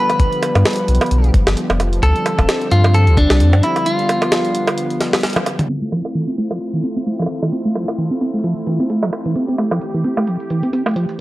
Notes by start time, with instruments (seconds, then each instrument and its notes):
Already playing: analog synth pad D3 F3 G3 B3, clean electric guitar B4
0.10 closed hi-hat, high bongo
0.20 kick, closed hi-hat
0.32 closed hi-hat
0.43 closed hi-hat, high bongo
0.55 sub bass G2, closed hi-hat, high bongo
0.65 snare, closed hi-hat
0.68 closed hi-hat
0.70 closed hi-hat
0.73 closed hi-hat
0.76 closed hi-hat
0.78 closed hi-hat
0.88 sub bass B1, closed hi-hat
0.95 closed hi-hat
1.01 closed hi-hat, high bongo
1.06 closed hi-hat
1.11 sub bass B1, closed hi-hat
1.24 closed hi-hat
1.34 sub bass G1, kick, closed hi-hat
1.47 sub bass G1, snare, closed hi-hat, high bongo
1.57 closed hi-hat
1.70 sub bass F1, closed hi-hat, high bongo
1.80 closed hi-hat, high bongo
1.93 closed hi-hat
2.03 sub bass D2, analog synth pad D3 G3 C4, clean electric guitar A4, kick, closed hi-hat
2.16 closed hi-hat
2.26 closed hi-hat, high bongo
2.39 sub bass D1, kick, closed hi-hat, high bongo
2.49 snare, closed hi-hat
2.61 closed hi-hat
2.71 sub bass G2, clean electric guitar F4, closed hi-hat
2.84 closed hi-hat, high bongo
2.94 clean electric guitar A4, closed hi-hat
3.07 sub bass D2, closed hi-hat
3.17 clean electric guitar D4, kick, closed hi-hat
3.30 sub bass C2, snare, closed hi-hat
3.40 sub bass F2, closed hi-hat
3.53 sub bass G2, closed hi-hat, high bongo
3.63 clean electric guitar E4, closed hi-hat
3.76 closed hi-hat, high bongo
3.86 analog synth pad B3, clean electric guitar F4, closed hi-hat
3.99 closed hi-hat
4.09 closed hi-hat, high bongo
4.22 closed hi-hat, high bongo
4.32 snare, closed hi-hat
4.45 closed hi-hat
4.55 closed hi-hat
4.67 closed hi-hat, high bongo
4.78 closed hi-hat
4.90 closed hi-hat
5.01 snare, closed hi-hat
5.13 snare, closed hi-hat, high bongo
5.16 closed hi-hat
5.18 closed hi-hat
5.21 snare, closed hi-hat
5.23 closed hi-hat
5.27 closed hi-hat
5.30 closed hi-hat
5.33 closed hi-hat, mid tom, high bongo
5.46 closed hi-hat, high bongo
5.59 closed hi-hat, mid tom
5.69 analog synth pad A3 C4 E4 F4, acid bass C4, closed hi-hat
5.82 acid bass A3, closed hi-hat
5.92 acid bass F3, closed hi-hat, high bongo
6.05 closed hi-hat, high bongo
6.08 closed hi-hat
6.10 closed hi-hat
6.13 acid bass E3, closed hi-hat
6.15 closed hi-hat
6.18 closed hi-hat
6.22 closed hi-hat
6.25 closed hi-hat
6.28 acid bass C4, closed hi-hat
6.33 closed hi-hat
6.38 acid bass A3, closed hi-hat
6.51 acid bass F3, high bongo
6.61 closed hi-hat
6.74 acid bass E3, closed hi-hat
6.84 acid bass C4, closed hi-hat
6.97 acid bass C4, closed hi-hat
7.07 acid bass A3, closed hi-hat
7.19 acid bass F3, closed hi-hat, high bongo
7.22 high bongo
7.26 closed hi-hat, high bongo
7.42 acid bass E3, closed hi-hat, high bongo
7.53 acid bass C4, closed hi-hat
7.65 acid bass A3, closed hi-hat
7.68 closed hi-hat
7.70 closed hi-hat
7.71 closed hi-hat
7.73 closed hi-hat
7.75 acid bass F3, closed hi-hat, high bongo
7.88 closed hi-hat, high bongo
7.98 acid bass E3, closed hi-hat
8.11 acid bass C4, closed hi-hat
8.21 acid bass C4, closed hi-hat
8.34 acid bass A3
8.39 closed hi-hat
8.44 acid bass F3, closed hi-hat
8.57 closed hi-hat
8.67 acid bass E3, closed hi-hat
8.80 acid bass C4, closed hi-hat
8.90 acid bass A3, closed hi-hat
9.03 acid bass F3, closed hi-hat, high bongo
9.13 closed hi-hat, high bongo
9.26 acid bass E3, closed hi-hat
9.36 acid bass C4, analog synth pad G4, closed hi-hat
9.48 acid bass C4, closed hi-hat
9.58 acid bass A3, closed hi-hat, high bongo
9.71 acid bass F3, closed hi-hat, high bongo
9.81 closed hi-hat
9.94 acid bass E3, closed hi-hat
10.04 acid bass C4, closed hi-hat
10.17 acid bass A3, closed hi-hat, high bongo
10.27 acid bass F3, closed hi-hat
10.40 closed hi-hat
10.50 acid bass E3, closed hi-hat
10.63 acid bass C4, closed hi-hat
10.73 acid bass C4, closed hi-hat
10.86 acid bass A3, closed hi-hat, high bongo
10.89 closed hi-hat
10.91 closed hi-hat
10.94 acid bass F3, closed hi-hat
10.96 closed hi-hat
11.09 closed hi-hat